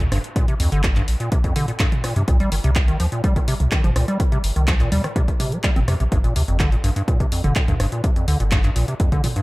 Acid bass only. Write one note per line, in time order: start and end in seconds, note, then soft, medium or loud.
0.00 0.04 A#2 medium
0.12 0.19 G2 loud
0.36 0.46 A#2 medium
0.48 0.55 C3 medium
0.60 0.70 F2 medium
0.72 0.82 D3 loud
0.84 0.88 A#2 medium
0.96 1.03 G2 loud
1.20 1.30 A#2 medium
1.32 1.39 C3 medium
1.44 1.54 F2 medium
1.56 1.66 D3 loud
1.68 1.72 A#2 medium
1.80 1.87 G2 loud
2.04 2.14 A#2 medium
2.16 2.23 C3 medium
2.28 2.38 A#2 medium
2.40 2.50 G3 loud
2.52 2.56 D#3 medium
2.64 2.71 C3 loud
2.88 2.98 D#3 medium
3.00 3.07 F3 medium
3.12 3.22 A#2 medium
3.24 3.34 G3 loud
3.36 3.40 D#3 medium
3.48 3.55 C3 loud
3.72 3.82 D#3 medium
3.84 3.91 F3 medium
3.96 4.06 A#2 medium
4.08 4.18 G3 loud
4.20 4.24 D#3 medium
4.32 4.39 C3 loud
4.56 4.66 D#3 medium
4.68 4.75 F3 medium
4.80 4.90 A#2 medium
4.92 5.02 G3 loud
5.04 5.08 D#3 medium
5.16 5.23 C3 loud
5.40 5.54 C3 medium
5.52 5.59 G3 medium
5.64 5.71 G3 medium
5.76 5.80 C4 medium
5.88 5.95 C3 loud
6.00 6.04 C3 medium
6.12 6.19 G2 loud
6.24 6.34 A#2 medium
6.36 6.43 C3 medium
6.48 6.58 F2 medium
6.60 6.70 D3 loud
6.72 6.76 A#2 medium
6.84 6.91 G2 loud
6.96 7.03 G2 loud
7.08 7.18 A#2 medium
7.20 7.27 C3 medium
7.32 7.42 F2 medium
7.44 7.54 D3 loud
7.56 7.60 A#2 medium
7.68 7.75 G2 loud
7.80 7.87 G2 loud
7.92 8.02 A#2 medium
8.04 8.11 C3 medium
8.16 8.26 F2 medium
8.28 8.38 D3 loud
8.40 8.44 A#2 medium
8.52 8.59 G2 loud
8.64 8.71 G2 loud
8.76 8.86 A#2 medium
8.88 8.95 C3 medium
9.00 9.10 F2 medium
9.12 9.22 D3 loud
9.24 9.28 A#2 medium
9.36 9.42 G2 loud